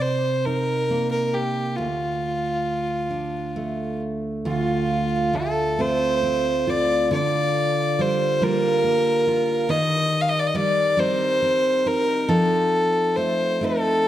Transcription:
Already playing: steel-string acoustic guitar C3 C4 D#4
0.01 fiddle C5
0.45 steel-string acoustic guitar D#4, fiddle A#4
0.90 steel-string acoustic guitar A#3
1.11 fiddle A#4
1.34 fiddle G4
1.76 steel-string acoustic guitar D2, fiddle F4
3.10 steel-string acoustic guitar D4
3.56 steel-string acoustic guitar A3
4.45 steel-string acoustic guitar D2 F4, fiddle F4
5.33 steel-string acoustic guitar A3, fiddle A4
5.79 steel-string acoustic guitar A3 C4 F4, fiddle C5
6.23 steel-string acoustic guitar C4
6.67 steel-string acoustic guitar F4, fiddle D5
7.11 steel-string acoustic guitar D3 F4, fiddle D5
7.99 steel-string acoustic guitar G3, fiddle C5
8.42 steel-string acoustic guitar G3 A#3 F4, fiddle A#4
8.84 steel-string acoustic guitar A#3
9.27 steel-string acoustic guitar F4
9.69 steel-string acoustic guitar D#3 D#4, fiddle D#5
10.21 fiddle F5
10.29 fiddle D#5
10.39 fiddle D5
10.47 fiddle D#5
10.54 steel-string acoustic guitar G3, fiddle D5
10.97 steel-string acoustic guitar G3 C4 D#4, fiddle C5
11.42 steel-string acoustic guitar C4
11.86 steel-string acoustic guitar D#4, fiddle A#4
12.28 steel-string acoustic guitar F3 D#4, fiddle A4
13.16 steel-string acoustic guitar A3, fiddle C5
13.61 steel-string acoustic guitar A3 C4 D#4, fiddle A4

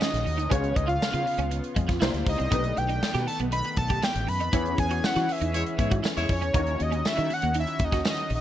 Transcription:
Already playing: analog synth pad D#3 C#4 F#4, grand piano A#3 C#4 D#4 F#4 C#5
0.00 clean electric guitar C#4, analog synth lead D#5, snare, tambourine
0.13 fretless electric bass A#1, snare, closed hi-hat
0.25 fretless electric bass D#2, muted clean electric guitar stroke, open hi-hat
0.37 fretless electric bass D2, clean electric guitar D#4, closed hi-hat
0.49 fretless electric bass C#2, analog synth pad C#3 B3 F4, grand piano B3 C#4 F4 G#4 C#5, clean electric guitar C#4, analog synth lead C#5, kick, closed hi-hat
0.64 closed hi-hat
0.76 fretless electric bass C#2, analog synth lead D#5, muted clean electric guitar stroke, kick, closed hi-hat
0.87 clean electric guitar F4, analog synth lead F5, closed hi-hat
1.01 muted fretless electric bass stroke, snare, tambourine
1.13 fretless electric bass C#3, clean electric guitar F4, closed hi-hat
1.26 muted clean electric guitar stroke, open hi-hat
1.38 fretless electric bass C#2, clean electric guitar C#4, closed hi-hat
1.51 muted clean electric guitar stroke, closed hi-hat
1.64 closed hi-hat
1.76 fretless electric bass F2, clean electric guitar G#3, kick, closed hi-hat
1.88 clean electric guitar F4, kick, snare, closed hi-hat
2.00 fretless electric bass C2, analog synth pad C3 A#3 D4 E4, grand piano A#3 D4 E4 G4 C5, clean electric guitar E4, snare, tambourine
2.14 fretless electric bass D2, snare, closed hi-hat
2.25 fretless electric bass C#2, analog synth lead D#5, muted clean electric guitar stroke, kick, open hi-hat
2.38 fretless electric bass C2, clean electric guitar C4, closed hi-hat
2.50 fretless electric bass B1, analog synth pad D#3 A3 B3, grand piano A3 D4 D#4 G4 B4, clean electric guitar B3, kick, closed hi-hat
2.64 closed hi-hat
2.77 fretless electric bass B1, analog synth lead G5, muted clean electric guitar stroke, closed hi-hat
2.89 clean electric guitar D#4, closed hi-hat
3.02 muted fretless electric bass stroke, snare, tambourine
3.14 fretless electric bass B2, clean electric guitar G4, snare, closed hi-hat
3.27 analog synth lead A5, muted clean electric guitar stroke, open hi-hat
3.40 fretless electric bass B1, clean electric guitar B3, closed hi-hat
3.52 clean electric guitar D#4, analog synth lead B5, closed hi-hat
3.64 muted clean electric guitar stroke, closed hi-hat
3.76 fretless electric bass B1, analog synth lead A5, kick, closed hi-hat
3.90 clean electric guitar G4, kick, closed hi-hat
4.02 clean electric guitar B3, analog synth lead G5, snare, tambourine
4.15 fretless electric bass A1, closed hi-hat
4.27 fretless electric bass F#2, analog synth lead B5, muted clean electric guitar stroke, open hi-hat
4.40 fretless electric bass F2, clean electric guitar D#4, closed hi-hat
4.52 fretless electric bass E2, analog synth pad E3 C#4 G#4, grand piano B3 C#4 E4 G#4 C#5, clean electric guitar E4, kick, closed hi-hat
4.66 closed hi-hat
4.78 fretless electric bass E2, analog synth lead G#5, muted clean electric guitar stroke, kick, closed hi-hat
4.91 clean electric guitar F#4, closed hi-hat
5.03 analog synth lead F#5, muted fretless electric bass stroke, snare, tambourine
5.16 fretless electric bass E3, clean electric guitar F#4, snare, closed hi-hat
5.28 analog synth lead E5, muted clean electric guitar stroke, open hi-hat
5.41 fretless electric bass E2, clean electric guitar D#4, closed hi-hat
5.53 horn section G#3 E4 C#5, muted clean electric guitar stroke, closed hi-hat
5.66 closed hi-hat
5.78 fretless electric bass G#2, horn section G#3 E4 C#5, clean electric guitar B3, kick, closed hi-hat
5.91 clean electric guitar F#4, kick, closed hi-hat
6.03 clean electric guitar E4, snare, tambourine
6.15 fretless electric bass E2, horn section G#3 E4 C#5, snare, closed hi-hat
6.29 fretless electric bass F2, analog synth lead C#5, muted clean electric guitar stroke, kick, open hi-hat
6.41 fretless electric bass E2, clean electric guitar C#4, closed hi-hat
6.53 fretless electric bass D#2, analog synth pad D#3 C#4 F#4, grand piano A#3 C#4 D#4 F#4 C#5, clean electric guitar D#4, kick, closed hi-hat
6.67 closed hi-hat
6.79 fretless electric bass D#2, analog synth lead D#5, muted clean electric guitar stroke, closed hi-hat
6.91 clean electric guitar C#4, closed hi-hat
7.05 analog synth lead E5, muted fretless electric bass stroke, snare, tambourine
7.17 fretless electric bass D#3, clean electric guitar D#4, closed hi-hat
7.30 analog synth lead F#5, muted clean electric guitar stroke, open hi-hat
7.42 fretless electric bass D#2, clean electric guitar A#3, closed hi-hat
7.54 clean electric guitar D#4, closed hi-hat
7.60 analog synth lead E5
7.67 muted clean electric guitar stroke, closed hi-hat
7.79 fretless electric bass D#2, kick, closed hi-hat
7.84 analog synth lead D#5
7.92 clean electric guitar F#4, kick, snare, closed hi-hat
8.05 clean electric guitar C#4, snare, tambourine
8.10 analog synth lead D#5
8.17 closed hi-hat
8.30 fretless electric bass A#1, muted clean electric guitar stroke, open hi-hat
8.35 analog synth lead D#5

